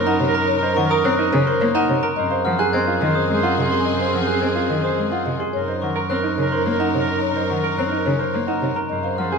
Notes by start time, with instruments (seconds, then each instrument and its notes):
Already playing: double bass F#2, string section D#4 A#4, marimba C#5
0.00 oboe A#4
0.07 grand piano D#4, marimba F#5, glockenspiel A#5
0.20 cello C3, marimba C#5
0.27 oboe A#4
0.34 grand piano A#4, marimba A#5, glockenspiel A#5
0.48 marimba C#5
0.56 oboe A#4
0.63 grand piano C5, marimba D#5
0.77 cello D#3, marimba F#5, glockenspiel C#6
0.85 oboe A#4
0.90 grand piano A#4, marimba A#5, glockenspiel D#6
1.04 cello C4, marimba C#5, glockenspiel F#6
1.15 oboe A#4
1.19 grand piano D#4, marimba C5
1.33 cello C#3, marimba C#5
1.44 oboe A#4, marimba A#4, grand piano C5, glockenspiel C6
1.60 cello A#3, marimba C#5
1.74 grand piano D#4, oboe A#4, marimba F#5, glockenspiel A#5
1.89 cello C3, marimba C#5
2.03 grand piano A#4, glockenspiel A#5, marimba A#5
2.16 double bass F#2, string section C4 G#4, oboe C5, marimba D#5
2.30 grand piano C5, marimba F5
2.44 cello F3, oboe C5, marimba F#5, glockenspiel F6
2.59 grand piano G#4, marimba G#5, glockenspiel F#6
2.73 cello C4, oboe C5, marimba D#5, glockenspiel G#6
2.87 grand piano F4, marimba C5
3.01 cello D#3, marimba D#5
3.05 oboe C5
3.15 marimba G#4, grand piano C5, glockenspiel D#6
3.30 cello G#3, marimba D#5
3.35 oboe C5
3.43 grand piano F4, marimba F#5, glockenspiel C6
3.58 cello C3, marimba D#5
3.65 oboe C5
3.71 grand piano G#4, marimba G#5, glockenspiel C6
3.85 marimba D#5
3.94 oboe C5
4.00 grand piano C5
4.13 cello F3, marimba F#5, glockenspiel F6
4.23 oboe C5
4.27 grand piano G#4, marimba G#5, glockenspiel F#6
4.41 cello C4, marimba D#5, glockenspiel G#6
4.53 grand piano F4, oboe C5, marimba C5
4.70 cello D#3, marimba D#5
4.82 marimba G#4, oboe C5, grand piano C5, glockenspiel D#6
4.97 cello G#3, marimba D#5
5.11 grand piano F4, oboe C5, marimba F#5, glockenspiel C6
5.26 cello C3, marimba D#5
5.39 grand piano G#4, marimba G#5, glockenspiel C6
5.53 double bass F#2, string section D#4 A#4, oboe A#4, marimba C#5
5.68 grand piano C5, marimba D#5
5.82 cello D#3, oboe A#4, marimba F#5, glockenspiel C#6
5.96 grand piano A#4, marimba A#5
6.10 cello C4, oboe A#4, marimba C#5, glockenspiel F#6
6.23 grand piano D#4, marimba C5
6.38 cello C#3, oboe A#4, marimba C#5
6.52 marimba A#4, grand piano C5, glockenspiel C6
6.66 cello A#3, marimba C#5
6.71 oboe A#4
6.79 grand piano D#4, marimba F#5, glockenspiel A#5
6.95 cello C3, marimba C#5
7.00 oboe A#4
7.08 grand piano A#4, glockenspiel A#5, marimba A#5
7.22 marimba C#5
7.29 oboe A#4
7.36 grand piano C5
7.50 cello D#3, marimba F#5, glockenspiel C#6
7.58 oboe A#4
7.64 grand piano A#4, marimba A#5
7.78 cello C4, marimba C#5, glockenspiel F#6
7.87 oboe A#4
7.92 grand piano D#4, marimba C5
8.06 cello C#3, marimba C#5
8.18 oboe A#4, marimba A#4, grand piano C5, glockenspiel C6
8.34 cello A#3, marimba C#5
8.47 grand piano D#4, oboe A#4, marimba F#5, glockenspiel A#5
8.62 cello C3, marimba C#5
8.76 grand piano A#4, marimba A#5, glockenspiel A#5
8.89 double bass F#2, string section C4 G#4, oboe C5, marimba D#5
9.03 grand piano C5, marimba F5
9.18 cello F3, oboe C5, marimba F#5, glockenspiel F6
9.32 grand piano G#4, marimba G#5